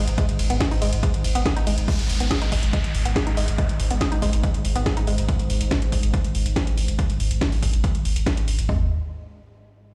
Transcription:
0.00 1.87 G#2 medium
0.08 0.18 G#1 medium
0.08 closed hi-hat medium
0.18 0.24 G#3 medium
0.18 kick loud
0.18 closed hi-hat medium
0.29 0.39 G#1 medium
0.29 closed hi-hat medium
0.39 0.49 G#1 loud
0.39 open hi-hat loud
0.39 ride medium
0.50 0.60 G#1 medium
0.50 0.52 B3 medium
0.50 closed hi-hat medium
0.60 0.67 G#4 loud
0.60 kick loud
0.60 snare loud
0.60 closed hi-hat medium
0.71 0.74 D#4 medium
0.71 open hi-hat medium
0.82 0.92 G#1 loud
0.82 0.86 G#3 medium
0.82 open hi-hat loud
0.82 ride medium
0.93 1.03 G#1 medium
0.93 closed hi-hat medium
1.03 1.09 G#3 medium
1.03 kick loud
1.03 closed hi-hat medium
1.14 1.24 G#1 medium
1.14 closed hi-hat medium
1.24 1.35 G#1 loud
1.24 open hi-hat loud
1.24 ride medium
1.35 1.45 G#1 medium
1.35 1.38 B3 medium
1.35 closed hi-hat medium
1.46 1.52 G#4 loud
1.46 kick loud
1.46 snare loud
1.46 closed hi-hat medium
1.56 1.59 D#4 medium
1.56 closed hi-hat medium
1.67 1.77 G#1 loud
1.67 1.71 G#3 medium
1.67 open hi-hat loud
1.67 ride medium
1.78 1.88 G#1 medium
1.78 closed hi-hat medium
1.88 8.73 G#2 medium
1.88 1.94 G#3 medium
1.88 kick loud
1.88 closed hi-hat medium
1.88 downlifter medium
1.99 2.09 G#1 medium
1.99 closed hi-hat medium
2.09 2.20 G#1 loud
2.09 open hi-hat loud
2.20 2.31 G#1 medium
2.20 2.23 B3 medium
2.20 closed hi-hat medium
2.31 2.37 G#4 loud
2.31 kick loud
2.31 snare loud
2.31 closed hi-hat medium
2.42 2.44 D#4 medium
2.42 closed hi-hat medium
2.52 2.62 G#1 loud
2.52 2.56 G#3 medium
2.52 kick medium
2.52 open hi-hat loud
2.63 2.73 G#1 medium
2.63 closed hi-hat medium
2.73 2.80 G#3 medium
2.73 kick loud
2.73 closed hi-hat medium
2.84 2.94 G#1 medium
2.84 closed hi-hat medium
2.94 3.05 G#1 loud
2.94 open hi-hat loud
3.05 3.16 G#1 medium
3.05 3.08 B3 medium
3.05 closed hi-hat medium
3.16 3.22 G#4 loud
3.16 kick loud
3.16 snare loud
3.16 closed hi-hat medium
3.27 3.29 D#4 medium
3.27 closed hi-hat medium
3.37 3.47 G#1 loud
3.37 3.41 G#3 medium
3.37 open hi-hat loud
3.48 3.58 G#1 medium
3.48 closed hi-hat medium
3.58 3.65 G#3 medium
3.58 kick loud
3.58 closed hi-hat medium
3.69 3.79 G#1 medium
3.69 closed hi-hat medium
3.80 3.90 G#1 loud
3.80 open hi-hat loud
3.90 4.01 G#1 medium
3.90 3.93 B3 medium
3.90 closed hi-hat medium
4.01 4.07 G#4 loud
4.01 kick loud
4.01 snare loud
4.01 closed hi-hat medium
4.12 4.14 D#4 medium
4.12 closed hi-hat medium
4.22 4.32 G#1 loud
4.22 4.26 G#3 medium
4.22 kick medium
4.22 open hi-hat loud
4.33 4.43 G#1 medium
4.33 closed hi-hat medium
4.43 4.50 G#3 medium
4.43 kick loud
4.43 closed hi-hat medium
4.54 4.64 G#1 medium
4.54 closed hi-hat medium
4.65 4.75 G#1 loud
4.65 open hi-hat loud
4.75 4.86 G#1 medium
4.75 4.78 B3 medium
4.75 closed hi-hat medium
4.86 4.92 G#4 loud
4.86 kick loud
4.86 snare loud
4.86 closed hi-hat medium
4.97 4.99 D#4 medium
4.97 closed hi-hat medium
5.07 5.18 G#1 loud
5.07 5.12 G#3 medium
5.07 open hi-hat loud
5.18 5.28 G#1 medium
5.18 closed hi-hat medium
5.28 kick loud
5.28 closed hi-hat medium
5.39 5.49 G#1 medium
5.39 closed hi-hat medium
5.50 5.60 G#1 loud
5.50 open hi-hat loud
5.61 5.71 G#1 medium
5.61 closed hi-hat medium
5.71 kick loud
5.71 snare loud
5.71 closed hi-hat medium
5.82 closed hi-hat medium
5.92 6.03 G#1 loud
5.92 kick medium
5.92 open hi-hat loud
6.03 6.13 G#1 medium
6.03 closed hi-hat medium
6.14 kick loud
6.14 closed hi-hat medium
6.24 6.34 G#1 medium
6.24 closed hi-hat medium
6.35 6.45 G#1 loud
6.35 open hi-hat loud
6.46 6.56 G#1 medium
6.46 closed hi-hat medium
6.56 kick loud
6.56 snare loud
6.56 closed hi-hat medium
6.67 closed hi-hat medium
6.77 6.88 G#1 loud
6.77 open hi-hat loud
6.88 6.99 G#1 medium
6.88 closed hi-hat medium
6.99 kick loud
6.99 closed hi-hat medium
7.09 7.19 G#1 medium
7.09 closed hi-hat medium
7.20 7.30 G#1 loud
7.20 open hi-hat loud
7.31 7.41 G#1 medium
7.31 closed hi-hat medium
7.41 kick loud
7.41 snare loud
7.41 closed hi-hat medium
7.52 open hi-hat medium
7.63 7.73 G#1 loud
7.63 kick medium
7.63 open hi-hat loud
7.73 7.84 G#1 medium
7.73 closed hi-hat medium
7.84 kick loud
7.84 closed hi-hat medium
7.95 8.05 G#1 medium
7.95 closed hi-hat medium
8.05 8.15 G#1 loud
8.05 open hi-hat loud
8.16 8.26 G#1 medium
8.16 closed hi-hat medium
8.26 kick loud
8.26 snare loud
8.26 closed hi-hat medium
8.37 closed hi-hat medium
8.48 8.58 G#1 loud
8.48 open hi-hat loud
8.59 8.68 G#1 medium
8.59 closed hi-hat medium
8.69 8.89 G#1 loud
8.69 8.89 G#3 medium
8.69 kick loud
8.69 floor tom loud

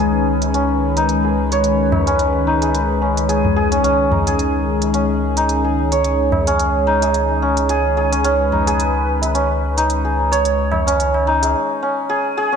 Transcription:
0.00 3.82 C#2 medium
0.00 11.51 D#3 medium
0.00 11.51 G#3 medium
0.00 0.54 C#4 medium
0.00 11.51 C#4 medium
0.00 0.96 D#4 medium
0.00 1.24 G#4 medium
0.00 3.83 B4 medium
0.42 closed hi-hat soft
0.42 tabla tin medium
0.54 2.07 C#4 medium
0.54 closed hi-hat soft
0.97 2.47 D#4 medium
0.97 closed hi-hat soft
1.09 closed hi-hat soft
1.24 2.62 G#4 medium
1.52 4.07 C#5 medium
1.52 closed hi-hat soft
1.64 closed hi-hat soft
1.92 tabla na medium
1.92 tabla ge medium
2.07 3.01 C#4 medium
2.07 closed hi-hat soft
2.19 closed hi-hat soft
2.47 4.11 D#4 medium
2.62 3.28 G#4 medium
2.62 closed hi-hat soft
2.62 tabla tin medium
2.75 closed hi-hat soft
2.91 tabla tin soft
3.02 3.71 C#4 medium
3.17 closed hi-hat soft
3.17 tabla tin soft
3.29 3.56 G#4 medium
3.29 closed hi-hat soft
3.45 tabla ge medium
3.56 4.26 G#4 medium
3.56 tabla tin soft
3.71 3.83 C#4 medium
3.71 closed hi-hat soft
3.83 11.54 C#2 medium
3.83 4.94 C#4 medium
3.83 8.24 G#4 medium
3.83 closed hi-hat soft
4.12 5.36 D#4 medium
4.12 tabla ge medium
4.27 5.64 G#4 medium
4.27 closed hi-hat soft
4.39 closed hi-hat soft
4.82 closed hi-hat soft
4.82 tabla tin medium
4.94 6.47 C#4 medium
4.94 closed hi-hat soft
5.37 6.86 D#4 medium
5.37 closed hi-hat soft
5.49 closed hi-hat soft
5.65 7.02 G#4 medium
5.92 8.47 C#5 medium
5.92 closed hi-hat soft
6.04 closed hi-hat soft
6.32 tabla na medium
6.32 tabla ge medium
6.47 7.42 C#4 medium
6.47 closed hi-hat soft
6.59 closed hi-hat soft
6.87 8.52 D#4 medium
7.02 7.69 G#4 medium
7.02 closed hi-hat soft
7.02 tabla tin medium
7.14 closed hi-hat soft
7.30 tabla tin soft
7.42 8.12 C#4 medium
7.57 closed hi-hat soft
7.57 tabla tin soft
7.69 7.97 G#4 medium
7.69 closed hi-hat soft
7.97 8.67 G#4 medium
7.97 tabla tin soft
8.12 8.24 C#4 medium
8.12 closed hi-hat soft
8.24 9.34 C#4 medium
8.24 11.55 B4 medium
8.24 closed hi-hat soft
8.52 9.77 D#4 medium
8.52 tabla ge medium
8.67 10.04 G#4 medium
8.67 closed hi-hat soft
8.80 closed hi-hat soft
9.22 closed hi-hat medium
9.22 tabla tin medium
9.34 10.87 C#4 medium
9.34 closed hi-hat soft
9.77 11.27 D#4 medium
9.77 closed hi-hat soft
9.90 closed hi-hat soft
10.05 11.42 G#4 medium
10.32 12.56 C#5 medium
10.32 closed hi-hat medium
10.45 closed hi-hat soft
10.72 tabla na medium
10.72 tabla ge medium
10.87 11.82 C#4 medium
10.87 closed hi-hat medium
11.00 closed hi-hat soft
11.14 tabla na medium
11.27 12.56 D#4 medium
11.42 12.09 G#4 medium
11.42 closed hi-hat soft
11.42 tabla tin medium
11.83 12.52 C#4 medium
12.10 12.37 G#4 loud
12.37 12.56 G#4 loud
12.52 12.56 C#4 medium

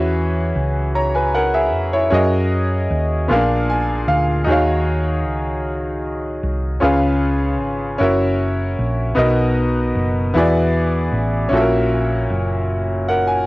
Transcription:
0.00 0.52 E2 loud
0.00 0.91 E3 medium
0.00 2.07 C#4 medium
0.00 0.92 F#4 medium
0.00 0.93 G#4 medium
0.00 0.93 B4 medium
0.00 0.95 E5 medium
0.56 1.73 C#2 medium
0.95 1.14 C#5 soft
0.95 1.14 A#5 medium
1.15 1.34 B4 medium
1.15 1.33 G#5 medium
1.35 1.53 A#4 medium
1.35 1.53 F#5 medium
1.54 1.91 G#4 medium
1.54 1.91 E5 medium
1.73 2.09 F2 medium
1.93 2.31 E4 medium
1.93 2.30 C#5 medium
2.10 2.87 F#2 loud
2.10 3.29 C#4 medium
2.10 3.29 F#4 medium
2.10 3.29 G#4 medium
2.10 3.30 A#4 medium
2.14 3.31 D#5 medium
2.90 3.27 D#2 medium
3.28 4.04 A#1 loud
3.28 4.44 A#2 medium
3.28 3.36 B3 medium
3.28 4.47 F4 medium
3.28 4.47 G#4 medium
3.28 4.48 A#4 medium
3.32 4.50 D4 medium
3.32 4.07 F5 medium
3.70 4.06 G#5 medium
4.08 4.44 D2 medium
4.08 4.45 F5 medium
4.45 5.26 D#2 loud
4.45 5.61 D#3 medium
4.45 6.77 D#4 medium
4.45 6.78 F#4 medium
4.45 6.79 G#4 medium
4.50 6.80 C#5 medium
4.50 6.81 F5 medium
5.26 6.39 C#2 medium
6.43 6.79 C2 medium
6.80 7.61 C#2 loud
6.80 7.96 C#3 medium
6.80 7.97 C#4 medium
6.80 7.99 F4 medium
6.80 8.00 G#4 medium
6.80 8.00 B4 medium
6.84 8.01 F5 medium
7.61 7.97 G#1 medium
7.98 8.75 F#1 loud
7.98 9.17 C#4 medium
7.98 9.17 E4 medium
7.98 9.15 F#4 medium
7.98 9.16 A#4 medium
8.03 9.19 E5 medium
8.79 9.15 A#1 medium
9.15 9.92 B1 loud
9.15 10.30 B2 medium
9.15 10.32 B3 medium
9.15 10.34 D#4 medium
9.15 10.34 F#4 medium
9.15 10.35 A#4 medium
9.15 10.36 D#5 medium
9.95 10.31 F#1 loud
10.34 11.09 E2 medium
10.34 11.49 E3 medium
10.34 11.52 B3 medium
10.34 11.49 E4 medium
10.34 11.51 F#4 medium
10.34 11.53 G#4 medium
10.38 11.54 D5 medium
11.12 11.49 A1 medium
11.49 12.26 A#1 loud
11.49 13.46 C#4 medium
11.49 13.46 E4 medium
11.49 13.46 F#4 medium
11.53 12.66 A#2 medium
11.53 11.60 A4 medium
11.53 12.70 E5 medium
11.61 12.72 A#4 medium
12.30 13.44 F#1 loud
13.09 13.28 A#4 medium
13.09 13.45 F#5 medium
13.27 13.46 G#5 medium

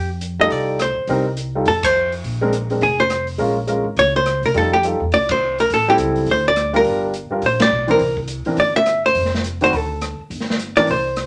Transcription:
0.00 0.48 F2 medium
0.21 closed hi-hat medium
0.39 0.77 G3 medium
0.39 0.78 D#4 medium
0.39 0.78 F4 medium
0.39 0.78 A4 medium
0.39 0.52 D#5 medium
0.50 0.93 C2 medium
0.50 0.80 D5 medium
0.50 kick soft
0.50 open hi-hat soft
0.79 1.24 C5 medium
0.79 cross-stick medium
0.79 closed hi-hat medium
0.97 muted upright bass stroke soft
1.07 1.63 C2 medium
1.07 1.24 G3 medium
1.07 1.25 C4 medium
1.07 1.24 D#4 medium
1.07 1.25 A#4 medium
1.07 kick soft
1.07 open hi-hat soft
1.37 closed hi-hat soft
1.55 1.66 G3 medium
1.55 1.66 D#4 soft
1.55 1.66 F4 medium
1.55 1.66 A4 medium
1.66 2.21 F2 medium
1.66 1.84 A4 medium
1.66 kick soft
1.66 open hi-hat soft
1.83 2.13 C5 medium
1.83 kick medium
1.83 ride medium
2.12 open hi-hat soft
2.24 2.79 A#1 medium
2.24 kick soft
2.24 open hi-hat soft
2.41 2.52 G#3 medium
2.41 2.52 C4 medium
2.41 2.52 D4 medium
2.41 2.52 A#4 medium
2.53 closed hi-hat medium
2.70 2.81 G#3 medium
2.70 2.81 C4 soft
2.70 2.81 D4 soft
2.70 2.81 A#4 medium
2.70 open hi-hat soft
2.81 3.36 F1 medium
2.81 2.99 G#4 medium
2.81 kick soft
2.81 open hi-hat soft
3.00 3.26 C5 medium
3.10 cross-stick medium
3.10 closed hi-hat medium
3.27 open hi-hat soft
3.38 3.82 A#1 medium
3.38 3.54 G#3 medium
3.38 3.55 C#4 medium
3.38 3.55 F4 medium
3.38 3.55 A#4 medium
3.38 kick soft
3.38 open hi-hat soft
3.67 3.83 G#3 medium
3.67 3.83 C#4 medium
3.67 3.84 F4 soft
3.67 3.84 A#4 medium
3.67 closed hi-hat soft
3.84 3.96 G#1 medium
3.97 4.40 C#2 medium
3.97 4.15 C#5 medium
3.97 kick soft
3.97 open hi-hat soft
4.16 4.42 C5 medium
4.26 cross-stick medium
4.26 closed hi-hat medium
4.42 4.53 C3 medium
4.42 4.56 A#4 medium
4.42 open hi-hat soft
4.54 4.97 F2 medium
4.54 4.70 G3 medium
4.54 4.70 D#4 medium
4.54 4.70 F4 medium
4.54 4.71 A4 medium
4.54 4.73 A4 medium
4.54 kick soft
4.54 open hi-hat soft
4.73 4.84 G4 medium
4.83 4.99 G3 soft
4.83 4.99 D#4 soft
4.83 5.00 F4 medium
4.83 5.00 A4 medium
4.83 closed hi-hat soft
5.00 5.11 E2 medium
5.12 5.67 C2 medium
5.12 5.30 D5 medium
5.12 kick soft
5.12 open hi-hat soft
5.29 5.57 C5 medium
5.29 kick medium
5.29 ride medium
5.58 5.70 A#4 medium
5.58 open hi-hat soft
5.70 5.97 A1 medium
5.70 5.88 A4 medium
5.70 kick soft
5.70 open hi-hat soft
5.88 6.26 G3 medium
5.88 6.26 C4 medium
5.88 6.26 E4 medium
5.88 5.96 G4 medium
5.88 6.26 A4 medium
5.98 6.25 C#2 medium
5.98 closed hi-hat medium
6.16 open hi-hat soft
6.26 6.82 D2 medium
6.26 kick soft
6.26 open hi-hat soft
6.31 6.46 C5 medium
6.48 6.73 D5 loud
6.56 cross-stick medium
6.56 closed hi-hat soft
6.73 7.11 G3 medium
6.73 7.11 D4 medium
6.73 7.11 F4 medium
6.73 7.12 A#4 medium
6.73 7.02 A#4 medium
6.73 open hi-hat soft
6.84 7.27 G1 medium
6.84 kick soft
6.84 open hi-hat soft
7.14 closed hi-hat medium
7.30 7.41 G3 medium
7.30 7.41 D4 soft
7.30 7.42 F4 medium
7.30 7.42 A#4 medium
7.30 muted upright bass stroke soft
7.42 7.69 A#1 medium
7.42 kick soft
7.42 open hi-hat soft
7.46 7.61 C5 medium
7.60 7.88 D5 loud
7.60 snare medium
7.60 ride medium
7.71 7.98 B1 medium
7.87 7.98 E3 medium
7.87 7.99 C4 medium
7.87 7.99 D4 medium
7.87 8.16 A#4 medium
7.87 7.99 C5 medium
7.87 open hi-hat soft
7.99 8.42 C2 medium
7.99 kick soft
7.99 open hi-hat soft
8.17 kick medium
8.28 closed hi-hat medium
8.45 8.56 E3 medium
8.45 8.56 C4 soft
8.45 8.57 D4 medium
8.45 8.57 A#4 medium
8.45 muted upright bass stroke soft
8.45 open hi-hat soft
8.57 9.12 G1 medium
8.57 8.75 D5 medium
8.57 kick soft
8.57 open hi-hat soft
8.76 9.02 E5 loud
8.86 cross-stick medium
8.86 closed hi-hat medium
9.06 9.31 C5 medium
9.15 9.70 F1 medium
9.15 kick soft
9.15 open hi-hat soft
9.25 snare soft
9.35 snare soft
9.44 closed hi-hat medium
9.61 9.71 D#3 medium
9.61 9.72 C4 medium
9.61 9.72 D4 medium
9.61 9.72 F#4 medium
9.61 9.76 C5 medium
9.61 open hi-hat soft
9.73 10.15 D2 medium
9.73 10.20 A4 medium
9.73 kick soft
9.73 open hi-hat soft
10.01 cross-stick medium
10.01 closed hi-hat medium
10.18 muted upright bass stroke soft
10.30 10.85 G1 medium
10.30 kick soft
10.30 open hi-hat soft
10.40 snare soft
10.50 snare soft
10.59 closed hi-hat soft
10.76 10.87 E3 medium
10.76 10.87 C4 medium
10.76 10.87 D4 medium
10.76 10.87 A#4 medium
10.76 10.88 D5 loud
10.76 open hi-hat soft
10.87 11.27 C2 medium
10.87 11.27 C5 medium
10.87 kick soft
10.87 open hi-hat soft
11.16 cross-stick medium
11.16 closed hi-hat medium

